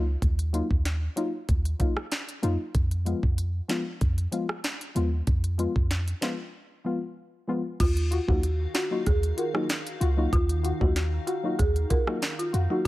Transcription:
Already playing: C#2
0.22 D#2, kick, closed hi-hat
0.39 closed hi-hat
0.53 F#3 A#3 D#4 F4, closed hi-hat
0.71 D#2, kick
0.85 snare, closed hi-hat
1.16 F#3 A#3 D#4 F4, closed hi-hat
1.49 D#2, kick, closed hi-hat
1.65 closed hi-hat
1.79 F#3 A#3 D#4 F4, kick, closed hi-hat
1.97 cross-stick
2.12 snare, closed hi-hat
2.29 closed hi-hat
2.42 F2 F#3 A#3 D#4 F4, closed hi-hat
2.75 F2, kick, closed hi-hat
2.91 closed hi-hat
3.05 F3 G#3 B3 F4, closed hi-hat
3.23 F2, kick
3.38 closed hi-hat
3.68 F3 G#3 B3 F4, snare, closed hi-hat
4.01 F2, kick, closed hi-hat
4.18 closed hi-hat
4.32 F3 G#3 B3 F4, closed hi-hat
4.49 cross-stick
4.64 snare, closed hi-hat
4.81 closed hi-hat
4.95 D#2 F3 G#3 B3 F4, closed hi-hat
5.27 F2, kick, closed hi-hat
5.44 closed hi-hat
5.58 F3 G#3 B3 F4, closed hi-hat
5.76 F2, kick
5.91 snare, closed hi-hat
6.08 closed hi-hat
6.21 F3 G#3 B3 F4, snare, closed hi-hat
6.84 F3 G#3 B3 F4
7.48 F3 G#3 B3 F4
7.80 D#2 D#3 D#4 F4 F#4 F5, kick, closed hi-hat, crash
7.97 closed hi-hat
8.11 F4 F#4, closed hi-hat
8.28 D#2 F#3 A#3 D#4 F4 F#4, kick
8.43 closed hi-hat
8.74 F4 F#4, snare, closed hi-hat
8.91 F#3 A#3 D#4 F4 F#4
9.06 D#2 G#4, kick, closed hi-hat
9.23 closed hi-hat
9.37 F4 F#4 A#4, closed hi-hat
9.54 F#3 A#3 D#4 F4 F#4, cross-stick
9.70 snare, closed hi-hat
9.87 closed hi-hat
10.00 C#2 F4 F#4, closed hi-hat
10.17 F#3 A#3 D#4 F4 F#4
10.33 D#2 F4, kick, closed hi-hat
10.49 closed hi-hat
10.63 F4 F#4, closed hi-hat
10.80 D#2 F#3 A#3 D#4 F4 F#4, kick
10.96 snare, closed hi-hat
11.27 F4 F#4, closed hi-hat
11.43 F#3 A#3 D#4 F4 F#4
11.59 D#2 G#4, kick, closed hi-hat
11.76 closed hi-hat
11.90 F4 F#4 A#4, kick, closed hi-hat
12.07 F#3 A#3 D#4 F4 F#4, cross-stick
12.22 snare, closed hi-hat
12.39 F4, closed hi-hat
12.53 F2 F4 F#4, closed hi-hat
12.70 F#3 A#3 D#4 F4 F#4

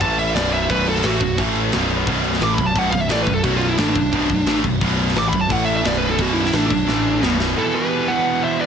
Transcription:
0.01 A1 A2 E3 A3 A5, kick, crash
0.19 E5, crash
0.35 B0 B1 F#2 B2 D5, snare, crash
0.52 E5, crash
0.70 B0 B1 F#2 B2 B4, kick, crash
0.87 A4, crash
0.96 snare
1.03 A1 A2 E3 A3 F#4, snare, crash
1.20 B0 B1 F#2, kick, crash
1.38 A1 A2 E3 A3, kick, crash
1.56 crash
1.72 B0 B1 F#2 B2, snare, crash
1.90 crash
2.07 B0 B1 F#2 B2, kick, crash
2.24 crash
2.34 snare
2.41 A1 A2 E3 A3 D6, snare, crash
2.55 B0 B5, kick, crash
2.59 B1 F#2
2.66 A5
2.76 B0 B1 F#2 B2 F#5, kick, crash
2.91 B0 B1 F#2 F5, kick, crash
3.01 E5
3.09 A1 A2 E3 A3 D5, snare, crash
3.23 B4
3.27 B0 B1 F#2, kick, crash
3.34 A4
3.43 B0 B1 F#2 B2 F#4, kick, crash
3.57 F4
3.61 crash
3.68 E4
3.78 A1 A2 E3 A3 D4, snare, crash
3.90 D4
3.96 B0 B1 F#2, kick, crash
4.13 B0 B1 F#2 B2, kick, crash
4.29 B0 B1 F#2, kick, crash
4.46 A1 A2 E3 A3, snare, crash
4.64 B0 B1 F#2, kick, crash
4.81 B0 B1 F#2 B2, kick, crash
4.99 crash
5.08 snare
5.16 A1 A2 E3 A3 D6, snare, crash
5.29 B5, crash
5.33 B0 B1 F#2, kick
5.41 A5
5.49 A1 A2 E3 A3 F#5, kick, crash
5.65 E5, crash
5.77 E5
5.83 B0 B1 F#2 B2 D5, snare, crash
5.98 B4
6.02 crash
6.10 A4
6.18 B0 B1 F#2 B2, kick, crash
6.22 F#4
6.33 E4, crash
6.44 E4, snare
6.53 A1 A2 E3 A3 D4, snare, crash
6.67 B0 B1 F#2 D4, kick, crash
6.86 A1 A2 E3 A3, snare
7.21 B0 B1 F#2 B2, snare
7.40 snare
7.57 E2 B2 E3 E4 A4
7.65 E2 B2
7.72 E2 B2 G4 B4
7.80 E2 B2
7.88 E2 B2
7.96 E2 B2
8.03 E2 B2
8.08 E2 B2 B4 F#5
8.18 E2 B2
8.26 E2 B2
8.32 E2 B2
8.41 E2 B2 C5 E5
8.49 E2 B2
8.56 E2 B2
8.60 B4 D5

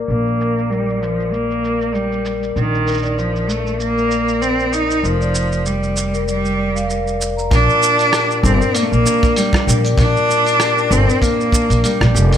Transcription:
Already playing: A#4 D5
0.08 A#1 A#3, shaker
0.27 shaker
0.41 shaker
0.58 shaker
0.70 G3 A#4, shaker
0.86 D5, shaker
1.01 F3, shaker
1.20 shaker
1.32 A#3, shaker
1.51 shaker
1.64 shaker
1.79 A#4, shaker
1.93 G3 D5, shaker
2.12 shaker
2.25 shaker
2.43 shaker
2.56 A#1 D#3, shaker
2.74 shaker
2.86 A#4, shaker
2.91 shaker
2.94 shaker
2.97 shaker
2.98 shaker
3.02 D5, shaker
3.05 shaker
3.17 F3, shaker
3.36 shaker
3.49 A3, shaker
3.67 shaker
3.80 A#3, shaker
3.96 A#4, shaker
4.08 D5, shaker
4.28 shaker
4.41 C4, shaker
4.59 shaker
4.73 D#4, shaker
4.91 shaker
5.02 F1 F3 A#4, shaker
5.21 D5, shaker
5.35 shaker
5.52 shaker
5.66 G3, shaker
5.83 shaker
5.97 shaker
6.14 A#4, shaker
6.28 G3 D5, shaker
6.45 shaker
6.75 F5, shaker
6.88 A#4, shaker
7.07 shaker
7.20 D5, shaker
7.37 A#5, shaker
7.50 A#1 A#2 D4 A#4, kick, open hi-hat, shaker
7.67 D5, shaker
7.81 D4, shaker
7.99 open hi-hat, shaker
8.12 G4, cross-stick, open hi-hat, shaker
8.31 shaker
8.43 G1 C4 D4, kick, shaker
8.59 A#4, shaker
8.73 A#3 D5, open hi-hat, shaker
8.83 A3
8.91 A#1 A#3, shaker
9.05 D4, shaker
9.23 kick, open hi-hat, shaker
9.36 G3 A#3, open hi-hat, shaker
9.53 kick, cross-stick, shaker
9.66 A#1 G4 A#4, shaker
9.84 D5, open hi-hat, shaker
9.97 A#1 A#2 D4, kick, open hi-hat, shaker
10.17 shaker
10.29 D4, shaker
10.46 open hi-hat, shaker
10.60 G4, cross-stick, open hi-hat, shaker
10.76 A#4, shaker
10.90 G1 C4 D4 D5, shaker
11.10 shaker
11.22 A#3, kick, open hi-hat, shaker
11.41 shaker
11.52 D4, kick, shaker
11.70 A#1, open hi-hat, shaker
11.83 G3 A#3 A#4, open hi-hat, shaker
12.01 A#1 D5, cross-stick, shaker
12.14 F1 G4, shaker
12.32 open hi-hat, shaker

